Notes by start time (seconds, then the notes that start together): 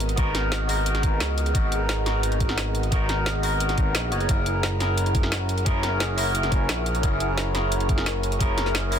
Already playing: G#1 B3 D#4 F#4 G#4 A#4 D#5 F#5
0.00 closed hi-hat
0.09 closed hi-hat
0.16 G#1 B3 D#4 F#4 A#4, kick, closed hi-hat
0.35 snare, closed hi-hat
0.52 snare, closed hi-hat
0.68 B3 D#4 F#4 A#4, open hi-hat
0.86 closed hi-hat
0.95 snare, closed hi-hat
1.03 G#1, kick, closed hi-hat
1.20 C#2, snare, closed hi-hat
1.38 closed hi-hat
1.46 closed hi-hat
1.53 G#1 B3 D#4 F#4 A#4, kick, closed hi-hat
1.72 closed hi-hat
1.89 snare, closed hi-hat
2.05 B3 D#4 F#4 A#4, snare, closed hi-hat
2.23 closed hi-hat
2.32 closed hi-hat
2.40 kick, closed hi-hat
2.49 snare
2.58 snare, closed hi-hat
2.75 closed hi-hat
2.83 closed hi-hat
2.91 G#1 B3 D#4 F#4 A#4, kick, closed hi-hat
3.09 snare, closed hi-hat
3.26 snare, closed hi-hat
3.42 B3 D#4 F#4 A#4, open hi-hat
3.60 closed hi-hat
3.69 snare, closed hi-hat
3.78 G#1, kick, closed hi-hat
3.95 A#1, snare, closed hi-hat
4.11 F#1 B3 D#4 F#4 C#5, closed hi-hat
4.20 closed hi-hat
4.28 F#1 C#4 E4 G#4 A#4 E5 C#6, kick, closed hi-hat
4.46 closed hi-hat
4.63 snare, closed hi-hat
4.79 C#4 E4 G#4 A#4, snare, closed hi-hat
4.98 closed hi-hat
5.06 closed hi-hat
5.15 kick, closed hi-hat
5.23 snare
5.32 snare, closed hi-hat
5.49 closed hi-hat
5.58 closed hi-hat
5.65 F#1 C#4 E4 G#4 A#4, kick, closed hi-hat
5.83 snare, closed hi-hat
6.00 snare, closed hi-hat
6.16 C#4 E4 G#4 A#4, open hi-hat
6.35 closed hi-hat
6.43 snare, closed hi-hat
6.52 F#1, kick, closed hi-hat
6.69 A#1, snare, closed hi-hat
6.86 closed hi-hat
6.95 closed hi-hat
7.02 F#1 C#4 E4 G#4 A#4, kick, closed hi-hat
7.20 closed hi-hat
7.38 snare, closed hi-hat
7.53 C#4 E4 G#4 A#4, snare, closed hi-hat
7.72 closed hi-hat
7.80 closed hi-hat
7.89 kick, closed hi-hat
7.98 snare
8.06 snare, closed hi-hat
8.23 closed hi-hat
8.32 closed hi-hat
8.39 F#1 C#4 E4 G#4 A#4, kick, closed hi-hat
8.58 snare, closed hi-hat
8.66 snare
8.75 snare, closed hi-hat
8.91 C#4 E4 G#4 A#4, open hi-hat